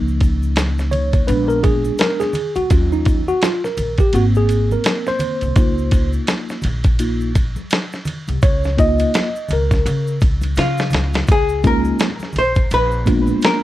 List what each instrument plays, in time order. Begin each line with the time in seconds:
Already playing: upright bass C#2, tine electric piano F3 A#3 D#4
0.08 maracas
0.20 kick, ride, maracas
0.43 maracas
0.56 snare, hi-hat pedal, ride, maracas
0.79 snare, maracas
0.91 tine electric piano C#5, ride, high conga, low conga, maracas
1.13 kick, ride, maracas
1.27 upright bass A#1, tine electric piano G#3 B3 D4 B4, ride, maracas
1.48 tine electric piano A#4, maracas
1.63 tine electric piano G#4, kick, ride, maracas
1.85 high conga, maracas
1.98 tine electric piano A#4, snare, hi-hat pedal, ride, maracas
2.20 tine electric piano G#4, snare, maracas
2.33 ride, low conga, maracas
2.56 upright bass D2, tine electric piano F#4, ride, high conga, maracas
2.70 upright bass D#2, tine electric piano F#3 C#4 F4, kick, ride, maracas
2.92 tine electric piano D#4, maracas
3.05 kick, ride, maracas
3.28 tine electric piano F#4, maracas
3.42 tine electric piano F4, snare, hi-hat pedal, ride, maracas
3.64 tine electric piano A#4, snare, maracas
3.77 upright bass A#1, ride, high conga, low conga, maracas
3.98 tine electric piano G4, kick, ride, maracas
4.13 upright bass G#1, tine electric piano A#3 C4 F#4, ride, maracas
4.35 tine electric piano G#4, maracas
4.49 ride, maracas
4.71 tine electric piano A#4, high conga, maracas
4.84 snare, hi-hat pedal, ride, maracas
5.06 tine electric piano C5, snare, maracas
5.19 ride, low conga, maracas
5.41 upright bass C2, ride, high conga, maracas
5.56 upright bass C#2, tine electric piano A#3 D#4 F4, kick, ride, maracas
5.78 maracas
5.91 kick, ride, maracas
6.13 maracas
6.27 snare, hi-hat pedal, ride, maracas
6.49 snare, maracas
6.62 upright bass A#1, ride, high conga, low conga, maracas
6.84 kick, ride, maracas
6.99 tine electric piano A#3 D#4 F4, ride, maracas
7.21 maracas
7.35 kick, ride, maracas
7.56 high conga, maracas
7.70 snare, hi-hat pedal, ride, maracas
7.93 snare, maracas
8.05 ride, low conga, maracas
8.28 upright bass C2, ride, high conga, maracas
8.42 upright bass C#2, tine electric piano C#5, kick, ride, maracas
8.64 snare, maracas
8.77 tine electric piano A#3 D#4 F4 D#5, kick, ride, maracas
8.99 ride, maracas
9.14 snare, hi-hat pedal, ride, maracas
9.36 maracas
9.49 upright bass C#2, ride, high conga, low conga, maracas
9.53 tine electric piano A#4
9.71 kick, snare, ride, maracas
9.86 upright bass C#3, ride, maracas
10.07 maracas
10.21 upright bass C#2, kick, ride, maracas
10.42 ride, high conga, maracas
10.56 upright bass C#3, hollow-body jazz guitar F4, snare, hi-hat pedal, ride, maracas
10.78 snare, maracas
10.91 upright bass C#2, snare, ride, low conga, maracas
11.13 snare, ride, high conga, maracas
11.27 upright bass C#2, kick, ride, maracas
11.32 hollow-body jazz guitar G#4
11.49 maracas
11.64 tine electric piano G#3 A#3 C#4 D#4 F4, hollow-body jazz guitar A#4, kick, ride, maracas
11.85 maracas
11.99 snare, hi-hat pedal, ride, maracas
12.20 snare, high conga, maracas
12.33 upright bass A#1, ride, low conga, maracas
12.38 hollow-body jazz guitar C5
12.55 kick, ride, maracas
12.70 upright bass A#1, hollow-body jazz guitar B4, ride, maracas
12.92 maracas
13.06 tine electric piano G#3 A#3 B3 D4 F4, kick, ride, low conga, maracas
13.27 high conga, maracas
13.41 hollow-body jazz guitar A#4, snare, hi-hat pedal, ride, maracas